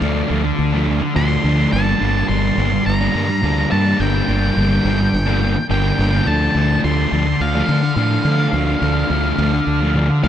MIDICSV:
0, 0, Header, 1, 5, 480
1, 0, Start_track
1, 0, Key_signature, -2, "minor"
1, 0, Tempo, 568182
1, 1456, Time_signature, 4, 2, 24, 8
1, 8686, End_track
2, 0, Start_track
2, 0, Title_t, "Lead electric guitar"
2, 0, Program_c, 0, 29
2, 982, Note_on_c, 0, 84, 106
2, 1454, Note_off_c, 0, 84, 0
2, 1458, Note_on_c, 0, 81, 107
2, 1928, Note_off_c, 0, 81, 0
2, 1931, Note_on_c, 0, 84, 115
2, 2415, Note_off_c, 0, 84, 0
2, 2418, Note_on_c, 0, 82, 97
2, 3105, Note_off_c, 0, 82, 0
2, 3138, Note_on_c, 0, 81, 94
2, 3380, Note_on_c, 0, 79, 98
2, 3385, Note_off_c, 0, 81, 0
2, 4785, Note_off_c, 0, 79, 0
2, 4823, Note_on_c, 0, 79, 108
2, 5299, Note_on_c, 0, 81, 104
2, 5314, Note_off_c, 0, 79, 0
2, 5744, Note_off_c, 0, 81, 0
2, 5781, Note_on_c, 0, 84, 105
2, 6263, Note_on_c, 0, 77, 80
2, 6272, Note_off_c, 0, 84, 0
2, 8623, Note_off_c, 0, 77, 0
2, 8649, Note_on_c, 0, 77, 90
2, 8686, Note_off_c, 0, 77, 0
2, 8686, End_track
3, 0, Start_track
3, 0, Title_t, "Distorted electric guitar"
3, 0, Program_c, 1, 30
3, 3, Note_on_c, 1, 50, 96
3, 13, Note_on_c, 1, 53, 95
3, 19, Note_on_c, 1, 57, 99
3, 27, Note_on_c, 1, 62, 106
3, 241, Note_off_c, 1, 50, 0
3, 248, Note_off_c, 1, 53, 0
3, 251, Note_on_c, 1, 50, 83
3, 259, Note_on_c, 1, 53, 79
3, 262, Note_off_c, 1, 57, 0
3, 266, Note_on_c, 1, 57, 90
3, 269, Note_off_c, 1, 62, 0
3, 273, Note_on_c, 1, 62, 91
3, 369, Note_off_c, 1, 62, 0
3, 371, Note_off_c, 1, 53, 0
3, 375, Note_off_c, 1, 57, 0
3, 613, Note_off_c, 1, 50, 0
3, 613, Note_on_c, 1, 62, 74
3, 627, Note_on_c, 1, 57, 72
3, 637, Note_on_c, 1, 53, 67
3, 737, Note_off_c, 1, 53, 0
3, 739, Note_on_c, 1, 50, 71
3, 747, Note_on_c, 1, 53, 85
3, 753, Note_off_c, 1, 57, 0
3, 757, Note_on_c, 1, 57, 83
3, 761, Note_off_c, 1, 62, 0
3, 764, Note_on_c, 1, 62, 79
3, 855, Note_off_c, 1, 53, 0
3, 855, Note_off_c, 1, 62, 0
3, 859, Note_off_c, 1, 57, 0
3, 962, Note_off_c, 1, 50, 0
3, 972, Note_on_c, 1, 50, 91
3, 983, Note_on_c, 1, 53, 87
3, 991, Note_on_c, 1, 57, 98
3, 997, Note_on_c, 1, 62, 96
3, 1206, Note_off_c, 1, 50, 0
3, 1215, Note_off_c, 1, 53, 0
3, 1217, Note_on_c, 1, 50, 76
3, 1225, Note_on_c, 1, 53, 77
3, 1226, Note_off_c, 1, 57, 0
3, 1230, Note_on_c, 1, 57, 84
3, 1235, Note_off_c, 1, 62, 0
3, 1238, Note_on_c, 1, 62, 97
3, 1333, Note_off_c, 1, 62, 0
3, 1337, Note_on_c, 1, 62, 80
3, 1345, Note_off_c, 1, 57, 0
3, 1346, Note_off_c, 1, 53, 0
3, 1349, Note_on_c, 1, 57, 72
3, 1357, Note_on_c, 1, 53, 59
3, 1442, Note_off_c, 1, 50, 0
3, 1452, Note_off_c, 1, 53, 0
3, 1457, Note_on_c, 1, 43, 99
3, 1462, Note_on_c, 1, 50, 106
3, 1467, Note_off_c, 1, 57, 0
3, 1468, Note_on_c, 1, 55, 103
3, 1471, Note_on_c, 1, 58, 110
3, 1472, Note_off_c, 1, 62, 0
3, 1475, Note_on_c, 1, 62, 104
3, 1684, Note_off_c, 1, 50, 0
3, 1694, Note_on_c, 1, 50, 84
3, 1701, Note_off_c, 1, 55, 0
3, 1705, Note_on_c, 1, 55, 78
3, 1707, Note_off_c, 1, 58, 0
3, 1710, Note_on_c, 1, 58, 88
3, 1713, Note_off_c, 1, 62, 0
3, 1716, Note_on_c, 1, 62, 91
3, 1929, Note_off_c, 1, 43, 0
3, 1930, Note_off_c, 1, 50, 0
3, 1933, Note_on_c, 1, 43, 83
3, 1940, Note_on_c, 1, 50, 94
3, 1942, Note_off_c, 1, 55, 0
3, 1946, Note_on_c, 1, 55, 91
3, 1950, Note_off_c, 1, 58, 0
3, 1953, Note_on_c, 1, 58, 107
3, 1954, Note_off_c, 1, 62, 0
3, 1957, Note_on_c, 1, 62, 92
3, 2162, Note_off_c, 1, 50, 0
3, 2172, Note_on_c, 1, 50, 90
3, 2182, Note_off_c, 1, 55, 0
3, 2185, Note_off_c, 1, 58, 0
3, 2185, Note_on_c, 1, 55, 94
3, 2188, Note_on_c, 1, 58, 86
3, 2192, Note_off_c, 1, 62, 0
3, 2195, Note_on_c, 1, 62, 89
3, 2291, Note_off_c, 1, 58, 0
3, 2292, Note_off_c, 1, 55, 0
3, 2294, Note_off_c, 1, 62, 0
3, 2295, Note_off_c, 1, 50, 0
3, 2538, Note_on_c, 1, 62, 78
3, 2551, Note_on_c, 1, 58, 68
3, 2559, Note_on_c, 1, 55, 57
3, 2651, Note_on_c, 1, 50, 73
3, 2653, Note_off_c, 1, 55, 0
3, 2659, Note_off_c, 1, 58, 0
3, 2663, Note_on_c, 1, 55, 85
3, 2669, Note_on_c, 1, 58, 82
3, 2670, Note_off_c, 1, 62, 0
3, 2673, Note_on_c, 1, 62, 93
3, 2769, Note_off_c, 1, 58, 0
3, 2772, Note_off_c, 1, 50, 0
3, 2772, Note_off_c, 1, 55, 0
3, 2774, Note_off_c, 1, 62, 0
3, 2889, Note_off_c, 1, 43, 0
3, 2892, Note_on_c, 1, 43, 86
3, 2894, Note_on_c, 1, 50, 91
3, 2904, Note_on_c, 1, 55, 90
3, 2908, Note_on_c, 1, 58, 88
3, 2911, Note_on_c, 1, 62, 105
3, 3118, Note_off_c, 1, 50, 0
3, 3128, Note_on_c, 1, 50, 85
3, 3129, Note_off_c, 1, 55, 0
3, 3134, Note_off_c, 1, 58, 0
3, 3139, Note_on_c, 1, 55, 86
3, 3144, Note_on_c, 1, 58, 95
3, 3148, Note_off_c, 1, 62, 0
3, 3151, Note_on_c, 1, 62, 94
3, 3247, Note_off_c, 1, 62, 0
3, 3250, Note_on_c, 1, 62, 80
3, 3254, Note_off_c, 1, 58, 0
3, 3262, Note_off_c, 1, 55, 0
3, 3264, Note_on_c, 1, 58, 77
3, 3272, Note_on_c, 1, 55, 61
3, 3357, Note_off_c, 1, 43, 0
3, 3365, Note_off_c, 1, 50, 0
3, 3368, Note_on_c, 1, 43, 110
3, 3369, Note_off_c, 1, 55, 0
3, 3375, Note_on_c, 1, 50, 99
3, 3377, Note_off_c, 1, 58, 0
3, 3379, Note_on_c, 1, 55, 122
3, 3387, Note_off_c, 1, 62, 0
3, 3387, Note_on_c, 1, 58, 120
3, 3390, Note_on_c, 1, 62, 119
3, 3597, Note_off_c, 1, 50, 0
3, 3605, Note_off_c, 1, 55, 0
3, 3607, Note_on_c, 1, 50, 77
3, 3611, Note_off_c, 1, 58, 0
3, 3615, Note_on_c, 1, 55, 83
3, 3622, Note_on_c, 1, 58, 89
3, 3626, Note_off_c, 1, 62, 0
3, 3629, Note_on_c, 1, 62, 81
3, 3840, Note_off_c, 1, 43, 0
3, 3846, Note_off_c, 1, 50, 0
3, 3850, Note_on_c, 1, 43, 88
3, 3854, Note_off_c, 1, 55, 0
3, 3856, Note_on_c, 1, 50, 90
3, 3858, Note_off_c, 1, 58, 0
3, 3864, Note_on_c, 1, 55, 89
3, 3868, Note_on_c, 1, 58, 101
3, 3869, Note_off_c, 1, 62, 0
3, 3872, Note_on_c, 1, 62, 102
3, 4081, Note_off_c, 1, 50, 0
3, 4088, Note_off_c, 1, 55, 0
3, 4091, Note_on_c, 1, 50, 81
3, 4094, Note_off_c, 1, 58, 0
3, 4099, Note_on_c, 1, 55, 80
3, 4104, Note_on_c, 1, 58, 81
3, 4106, Note_off_c, 1, 62, 0
3, 4109, Note_on_c, 1, 62, 94
3, 4215, Note_off_c, 1, 58, 0
3, 4216, Note_off_c, 1, 55, 0
3, 4218, Note_off_c, 1, 62, 0
3, 4219, Note_off_c, 1, 50, 0
3, 4334, Note_off_c, 1, 43, 0
3, 4448, Note_on_c, 1, 62, 78
3, 4462, Note_on_c, 1, 58, 70
3, 4469, Note_on_c, 1, 55, 58
3, 4569, Note_on_c, 1, 50, 87
3, 4570, Note_off_c, 1, 55, 0
3, 4576, Note_off_c, 1, 58, 0
3, 4580, Note_on_c, 1, 55, 81
3, 4586, Note_on_c, 1, 58, 89
3, 4587, Note_off_c, 1, 62, 0
3, 4591, Note_on_c, 1, 62, 85
3, 4687, Note_off_c, 1, 58, 0
3, 4689, Note_off_c, 1, 55, 0
3, 4692, Note_off_c, 1, 50, 0
3, 4693, Note_off_c, 1, 62, 0
3, 4808, Note_on_c, 1, 43, 90
3, 4812, Note_on_c, 1, 50, 103
3, 4819, Note_on_c, 1, 55, 106
3, 4826, Note_on_c, 1, 58, 107
3, 4829, Note_on_c, 1, 62, 99
3, 5040, Note_off_c, 1, 50, 0
3, 5050, Note_off_c, 1, 55, 0
3, 5051, Note_on_c, 1, 50, 86
3, 5054, Note_off_c, 1, 58, 0
3, 5060, Note_on_c, 1, 55, 82
3, 5065, Note_on_c, 1, 58, 89
3, 5068, Note_off_c, 1, 62, 0
3, 5071, Note_on_c, 1, 62, 89
3, 5162, Note_off_c, 1, 62, 0
3, 5165, Note_on_c, 1, 62, 83
3, 5166, Note_off_c, 1, 58, 0
3, 5176, Note_off_c, 1, 55, 0
3, 5176, Note_on_c, 1, 58, 73
3, 5186, Note_on_c, 1, 55, 65
3, 5273, Note_off_c, 1, 50, 0
3, 5278, Note_off_c, 1, 43, 0
3, 5282, Note_off_c, 1, 58, 0
3, 5283, Note_on_c, 1, 50, 110
3, 5287, Note_off_c, 1, 55, 0
3, 5291, Note_on_c, 1, 53, 119
3, 5300, Note_on_c, 1, 57, 120
3, 5302, Note_off_c, 1, 62, 0
3, 5305, Note_on_c, 1, 62, 109
3, 5521, Note_off_c, 1, 50, 0
3, 5524, Note_on_c, 1, 50, 87
3, 5534, Note_off_c, 1, 53, 0
3, 5537, Note_on_c, 1, 53, 87
3, 5540, Note_off_c, 1, 57, 0
3, 5543, Note_on_c, 1, 57, 80
3, 5546, Note_off_c, 1, 62, 0
3, 5549, Note_on_c, 1, 62, 91
3, 5767, Note_off_c, 1, 50, 0
3, 5771, Note_on_c, 1, 50, 89
3, 5775, Note_off_c, 1, 53, 0
3, 5779, Note_on_c, 1, 53, 101
3, 5783, Note_off_c, 1, 57, 0
3, 5787, Note_on_c, 1, 57, 106
3, 5790, Note_off_c, 1, 62, 0
3, 5793, Note_on_c, 1, 62, 108
3, 6005, Note_off_c, 1, 50, 0
3, 6009, Note_on_c, 1, 50, 83
3, 6014, Note_off_c, 1, 53, 0
3, 6017, Note_on_c, 1, 53, 99
3, 6020, Note_off_c, 1, 57, 0
3, 6023, Note_on_c, 1, 57, 86
3, 6027, Note_off_c, 1, 62, 0
3, 6031, Note_on_c, 1, 62, 88
3, 6137, Note_off_c, 1, 53, 0
3, 6137, Note_off_c, 1, 62, 0
3, 6140, Note_off_c, 1, 57, 0
3, 6372, Note_off_c, 1, 50, 0
3, 6374, Note_on_c, 1, 62, 74
3, 6383, Note_on_c, 1, 57, 64
3, 6394, Note_on_c, 1, 53, 61
3, 6490, Note_off_c, 1, 53, 0
3, 6492, Note_on_c, 1, 50, 83
3, 6500, Note_on_c, 1, 53, 88
3, 6501, Note_off_c, 1, 57, 0
3, 6505, Note_on_c, 1, 57, 91
3, 6510, Note_off_c, 1, 62, 0
3, 6514, Note_on_c, 1, 62, 83
3, 6614, Note_off_c, 1, 53, 0
3, 6615, Note_off_c, 1, 62, 0
3, 6616, Note_off_c, 1, 57, 0
3, 6725, Note_off_c, 1, 50, 0
3, 6735, Note_on_c, 1, 50, 98
3, 6743, Note_on_c, 1, 53, 86
3, 6751, Note_on_c, 1, 57, 92
3, 6756, Note_on_c, 1, 62, 115
3, 6959, Note_off_c, 1, 50, 0
3, 6964, Note_off_c, 1, 53, 0
3, 6969, Note_on_c, 1, 50, 78
3, 6974, Note_on_c, 1, 53, 92
3, 6981, Note_off_c, 1, 57, 0
3, 6984, Note_on_c, 1, 57, 90
3, 6988, Note_off_c, 1, 62, 0
3, 6991, Note_on_c, 1, 62, 85
3, 7078, Note_off_c, 1, 62, 0
3, 7088, Note_on_c, 1, 62, 80
3, 7089, Note_off_c, 1, 57, 0
3, 7099, Note_off_c, 1, 53, 0
3, 7100, Note_on_c, 1, 57, 74
3, 7109, Note_on_c, 1, 53, 65
3, 7196, Note_off_c, 1, 50, 0
3, 7204, Note_off_c, 1, 53, 0
3, 7206, Note_on_c, 1, 50, 99
3, 7211, Note_off_c, 1, 57, 0
3, 7215, Note_on_c, 1, 53, 107
3, 7220, Note_off_c, 1, 62, 0
3, 7222, Note_on_c, 1, 57, 98
3, 7230, Note_on_c, 1, 62, 107
3, 7438, Note_off_c, 1, 50, 0
3, 7446, Note_off_c, 1, 53, 0
3, 7448, Note_on_c, 1, 50, 83
3, 7455, Note_off_c, 1, 57, 0
3, 7456, Note_on_c, 1, 53, 74
3, 7461, Note_off_c, 1, 62, 0
3, 7465, Note_on_c, 1, 57, 80
3, 7471, Note_on_c, 1, 62, 98
3, 7677, Note_off_c, 1, 50, 0
3, 7685, Note_off_c, 1, 53, 0
3, 7687, Note_on_c, 1, 50, 87
3, 7694, Note_off_c, 1, 57, 0
3, 7696, Note_on_c, 1, 53, 93
3, 7700, Note_off_c, 1, 62, 0
3, 7704, Note_on_c, 1, 57, 106
3, 7710, Note_on_c, 1, 62, 91
3, 7920, Note_off_c, 1, 50, 0
3, 7928, Note_off_c, 1, 53, 0
3, 7930, Note_on_c, 1, 50, 94
3, 7936, Note_off_c, 1, 57, 0
3, 7939, Note_on_c, 1, 53, 94
3, 7945, Note_off_c, 1, 62, 0
3, 7946, Note_on_c, 1, 57, 90
3, 7955, Note_on_c, 1, 62, 89
3, 8041, Note_off_c, 1, 62, 0
3, 8046, Note_off_c, 1, 57, 0
3, 8048, Note_off_c, 1, 53, 0
3, 8285, Note_on_c, 1, 62, 71
3, 8292, Note_off_c, 1, 50, 0
3, 8298, Note_on_c, 1, 57, 71
3, 8306, Note_on_c, 1, 53, 60
3, 8402, Note_off_c, 1, 53, 0
3, 8404, Note_on_c, 1, 50, 78
3, 8407, Note_off_c, 1, 57, 0
3, 8412, Note_off_c, 1, 62, 0
3, 8412, Note_on_c, 1, 53, 80
3, 8417, Note_on_c, 1, 57, 86
3, 8422, Note_on_c, 1, 62, 82
3, 8521, Note_off_c, 1, 62, 0
3, 8526, Note_off_c, 1, 57, 0
3, 8528, Note_off_c, 1, 53, 0
3, 8632, Note_off_c, 1, 50, 0
3, 8642, Note_on_c, 1, 50, 82
3, 8652, Note_on_c, 1, 53, 100
3, 8659, Note_on_c, 1, 57, 87
3, 8686, Note_off_c, 1, 50, 0
3, 8686, Note_off_c, 1, 53, 0
3, 8686, Note_off_c, 1, 57, 0
3, 8686, End_track
4, 0, Start_track
4, 0, Title_t, "Fingered electric bass"
4, 0, Program_c, 2, 33
4, 12, Note_on_c, 2, 38, 99
4, 187, Note_off_c, 2, 38, 0
4, 256, Note_on_c, 2, 38, 93
4, 429, Note_off_c, 2, 38, 0
4, 496, Note_on_c, 2, 38, 93
4, 845, Note_off_c, 2, 38, 0
4, 980, Note_on_c, 2, 38, 93
4, 1153, Note_off_c, 2, 38, 0
4, 1218, Note_on_c, 2, 38, 95
4, 1392, Note_off_c, 2, 38, 0
4, 1461, Note_on_c, 2, 31, 105
4, 1634, Note_off_c, 2, 31, 0
4, 1699, Note_on_c, 2, 31, 86
4, 1872, Note_off_c, 2, 31, 0
4, 1936, Note_on_c, 2, 31, 95
4, 2111, Note_off_c, 2, 31, 0
4, 2177, Note_on_c, 2, 31, 99
4, 2352, Note_off_c, 2, 31, 0
4, 2422, Note_on_c, 2, 31, 98
4, 2595, Note_off_c, 2, 31, 0
4, 2661, Note_on_c, 2, 43, 93
4, 2834, Note_off_c, 2, 43, 0
4, 2899, Note_on_c, 2, 38, 90
4, 3073, Note_off_c, 2, 38, 0
4, 3144, Note_on_c, 2, 43, 90
4, 3316, Note_off_c, 2, 43, 0
4, 3378, Note_on_c, 2, 31, 106
4, 3552, Note_off_c, 2, 31, 0
4, 3618, Note_on_c, 2, 31, 89
4, 3792, Note_off_c, 2, 31, 0
4, 3859, Note_on_c, 2, 31, 99
4, 4033, Note_off_c, 2, 31, 0
4, 4097, Note_on_c, 2, 31, 101
4, 4271, Note_off_c, 2, 31, 0
4, 4340, Note_on_c, 2, 31, 101
4, 4688, Note_off_c, 2, 31, 0
4, 4816, Note_on_c, 2, 31, 97
4, 4991, Note_off_c, 2, 31, 0
4, 5060, Note_on_c, 2, 31, 95
4, 5233, Note_off_c, 2, 31, 0
4, 5298, Note_on_c, 2, 38, 106
4, 5472, Note_off_c, 2, 38, 0
4, 5532, Note_on_c, 2, 38, 94
4, 5708, Note_off_c, 2, 38, 0
4, 5780, Note_on_c, 2, 38, 101
4, 5953, Note_off_c, 2, 38, 0
4, 6015, Note_on_c, 2, 38, 97
4, 6190, Note_off_c, 2, 38, 0
4, 6257, Note_on_c, 2, 38, 95
4, 6431, Note_off_c, 2, 38, 0
4, 6493, Note_on_c, 2, 50, 93
4, 6668, Note_off_c, 2, 50, 0
4, 6727, Note_on_c, 2, 45, 95
4, 6904, Note_off_c, 2, 45, 0
4, 6967, Note_on_c, 2, 50, 99
4, 7144, Note_off_c, 2, 50, 0
4, 7205, Note_on_c, 2, 38, 100
4, 7383, Note_off_c, 2, 38, 0
4, 7448, Note_on_c, 2, 38, 90
4, 7625, Note_off_c, 2, 38, 0
4, 7688, Note_on_c, 2, 38, 98
4, 7864, Note_off_c, 2, 38, 0
4, 7927, Note_on_c, 2, 38, 101
4, 8104, Note_off_c, 2, 38, 0
4, 8168, Note_on_c, 2, 38, 101
4, 8519, Note_off_c, 2, 38, 0
4, 8649, Note_on_c, 2, 38, 93
4, 8686, Note_off_c, 2, 38, 0
4, 8686, End_track
5, 0, Start_track
5, 0, Title_t, "Muted distorted electric guitar strokes"
5, 372, Note_on_c, 9, 29, 63
5, 457, Note_off_c, 9, 29, 0
5, 859, Note_on_c, 9, 29, 54
5, 943, Note_off_c, 9, 29, 0
5, 2297, Note_on_c, 9, 29, 58
5, 2382, Note_off_c, 9, 29, 0
5, 2777, Note_on_c, 9, 29, 49
5, 2862, Note_off_c, 9, 29, 0
5, 4221, Note_on_c, 9, 29, 64
5, 4306, Note_off_c, 9, 29, 0
5, 4696, Note_on_c, 9, 29, 56
5, 4780, Note_off_c, 9, 29, 0
5, 6140, Note_on_c, 9, 29, 54
5, 6225, Note_off_c, 9, 29, 0
5, 6618, Note_on_c, 9, 29, 48
5, 6702, Note_off_c, 9, 29, 0
5, 8051, Note_on_c, 9, 29, 57
5, 8136, Note_off_c, 9, 29, 0
5, 8531, Note_on_c, 9, 29, 53
5, 8615, Note_off_c, 9, 29, 0
5, 8686, End_track
0, 0, End_of_file